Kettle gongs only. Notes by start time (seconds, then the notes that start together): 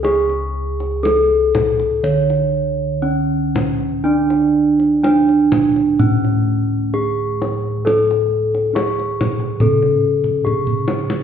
Already playing: C#2
0.03 G#4
1.03 D4
2.03 D3
3.04 D4
4.05 D4
5.04 D4
5.99 A2
6.93 D4
7.85 A4
8.73 D4
9.61 C#3
10.46 D4